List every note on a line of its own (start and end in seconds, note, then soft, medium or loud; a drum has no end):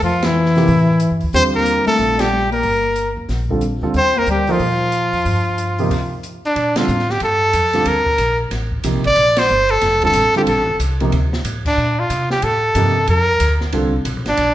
0.02 0.64 F2 medium
0.02 0.25 F3 medium
0.02 0.27 F4 medium
0.02 open hi-hat soft
0.22 1.21 E3 medium
0.22 1.22 E4 medium
0.22 snare medium
0.22 ride medium
0.46 snare soft
0.55 0.67 C3 medium
0.55 0.67 F3 medium
0.55 0.67 A#3 medium
0.55 0.67 E4 medium
0.55 0.67 G4 medium
0.55 snare soft
0.55 open hi-hat soft
0.67 1.08 A2 medium
0.67 open hi-hat soft
1.00 closed hi-hat medium
1.11 1.21 G2 medium
1.21 1.33 D2 medium
1.21 open hi-hat soft
1.33 1.83 D#2 medium
1.33 2.24 D3 medium
1.33 2.24 G3 medium
1.33 2.24 C4 medium
1.33 1.43 C4 medium
1.33 2.25 F4 medium
1.33 2.25 G4 medium
1.33 1.44 C5 loud
1.33 open hi-hat soft
1.55 1.85 A#3 medium
1.55 1.85 A#4 medium
1.66 closed hi-hat soft
1.86 2.21 A3 medium
1.86 2.22 A4 medium
1.86 muted upright bass stroke soft
1.86 open hi-hat soft
1.98 2.61 A#1 medium
1.98 open hi-hat soft
2.19 2.51 G3 medium
2.19 2.52 G4 medium
2.19 snare medium
2.19 ride medium
2.51 3.13 A#3 medium
2.51 3.13 A#4 medium
2.51 open hi-hat soft
2.63 3.13 G1 medium
2.63 open hi-hat soft
2.96 closed hi-hat soft
3.17 3.28 D2 medium
3.29 3.78 A#1 medium
3.29 snare soft
3.29 open hi-hat soft
3.49 3.61 D3 medium
3.49 3.61 G3 medium
3.49 3.61 C4 medium
3.49 3.61 F4 medium
3.49 3.61 A4 medium
3.49 kick medium
3.61 closed hi-hat medium
3.82 3.93 D2 medium
3.82 3.94 D3 medium
3.82 3.94 G3 medium
3.82 3.94 C4 medium
3.82 3.94 F4 medium
3.82 3.94 A4 medium
3.82 kick soft
3.94 4.25 D#2 medium
3.94 4.18 C4 medium
3.94 4.20 C5 loud
3.94 open hi-hat soft
4.17 4.28 A#3 medium
4.17 4.29 A#4 medium
4.27 4.57 D2 medium
4.27 4.50 G3 medium
4.27 closed hi-hat soft
4.31 4.53 G4 medium
4.47 4.59 F3 medium
4.47 6.24 F3 medium
4.47 4.59 A#3 medium
4.47 4.59 D#4 medium
4.47 4.59 A4 medium
4.47 4.59 C5 medium
4.47 open hi-hat soft
4.52 6.25 F4 medium
4.59 5.09 A#2 medium
4.59 open hi-hat soft
4.92 closed hi-hat soft
5.13 5.24 E2 medium
5.13 open hi-hat soft
5.25 5.87 G2 medium
5.25 open hi-hat soft
5.58 closed hi-hat medium
5.78 5.90 C3 medium
5.78 5.90 F3 medium
5.78 5.90 A#3 medium
5.78 5.90 D#4 medium
5.78 5.90 G4 medium
5.78 open hi-hat soft
5.91 kick medium
5.91 open hi-hat soft
5.91 crash medium
6.23 closed hi-hat medium
6.45 6.79 D4 medium
6.56 6.88 A#2 medium
6.56 ride medium
6.76 6.87 D3 medium
6.76 6.88 G3 medium
6.76 6.88 C4 medium
6.76 6.88 F4 medium
6.76 7.12 F4 medium
6.76 6.88 A4 medium
6.76 snare medium
6.76 ride medium
6.88 7.20 A2 medium
6.88 hi-hat pedal medium
6.99 snare soft
7.10 7.22 G4 medium
7.10 snare soft
7.20 7.53 G2 medium
7.20 7.90 A4 medium
7.20 ride medium
7.53 7.85 F2 medium
7.53 hi-hat pedal medium
7.53 ride medium
7.73 7.85 D3 medium
7.73 7.85 G3 medium
7.73 7.85 C4 medium
7.73 7.85 F4 medium
7.73 7.86 G4 medium
7.73 snare soft
7.73 ride soft
7.85 8.18 D2 medium
7.85 8.40 A#4 medium
7.85 ride medium
8.06 kick medium
8.18 8.50 A#1 medium
8.18 hi-hat pedal medium
8.18 ride medium
8.51 8.83 A1 medium
8.51 snare soft
8.51 ride medium
8.72 kick medium
8.84 8.95 C2 medium
8.84 9.03 C3 medium
8.84 9.03 F3 medium
8.84 9.03 A#3 soft
8.84 9.03 D#4 medium
8.84 9.03 G4 medium
8.84 hi-hat pedal medium
8.84 ride medium
8.95 9.05 A#1 soft
9.04 9.16 A1 medium
9.04 9.40 D5 loud
9.04 ride soft
9.16 9.48 A#1 medium
9.16 ride medium
9.36 9.72 C5 medium
9.36 snare medium
9.36 ride medium
9.48 9.81 G1 medium
9.48 hi-hat pedal medium
9.69 10.03 A4 loud
9.69 ride soft
9.81 10.14 F1 medium
9.81 snare soft
9.81 ride medium
10.02 10.13 D3 medium
10.02 10.14 G3 medium
10.02 10.14 C4 medium
10.02 10.14 F4 medium
10.02 10.14 A4 medium
10.02 10.34 A4 medium
10.02 kick medium
10.02 ride soft
10.13 10.34 A1 medium
10.13 hi-hat pedal medium
10.13 ride medium
10.35 10.46 D3 medium
10.35 10.46 G3 medium
10.35 10.46 C4 medium
10.35 10.47 F4 medium
10.35 10.42 G4 medium
10.35 10.47 A4 medium
10.35 muted upright bass stroke soft
10.35 ride soft
10.46 10.58 A#1 medium
10.46 10.78 A4 medium
10.46 ride medium
10.58 10.67 A1 medium
10.68 10.79 F1 medium
10.79 11.11 C2 medium
10.79 hi-hat pedal medium
10.79 ride medium
11.00 11.11 C3 medium
11.00 11.11 F3 medium
11.00 11.11 A#3 medium
11.00 11.12 D#4 medium
11.00 11.12 G4 medium
11.00 ride soft
11.12 11.44 D2 medium
11.12 ride medium
11.33 snare medium
11.45 11.76 A2 medium
11.45 hi-hat pedal medium
11.45 ride medium
11.65 12.01 D4 medium
11.65 kick medium
11.65 crash medium
11.78 12.09 A#2 medium
12.00 12.31 F4 medium
12.10 12.42 C3 medium
12.10 hi-hat pedal medium
12.10 ride medium
12.30 12.45 G4 medium
12.30 snare medium
12.42 12.74 A2 medium
12.42 13.08 A4 medium
12.42 ride medium
12.75 13.07 G2 medium
12.75 12.94 C3 medium
12.75 12.94 F3 medium
12.75 12.94 A#3 medium
12.75 12.94 D#4 medium
12.75 12.94 G4 medium
12.75 hi-hat pedal medium
12.75 ride medium
13.07 13.39 F2 medium
13.07 13.58 A#4 medium
13.07 ride medium
13.40 13.72 D2 medium
13.40 hi-hat pedal medium
13.40 ride medium
13.61 snare soft
13.72 14.05 C2 medium
13.72 13.91 D3 medium
13.72 13.91 G3 medium
13.72 13.91 C4 medium
13.72 13.92 F4 medium
13.72 13.92 A4 medium
13.72 ride medium
14.05 14.16 B1 medium
14.05 hi-hat pedal medium
14.05 ride medium
14.16 14.27 A#1 medium
14.26 14.37 A1 medium
14.26 14.54 D4 medium
14.26 snare soft
14.26 ride soft
14.37 14.54 A#1 medium
14.37 ride medium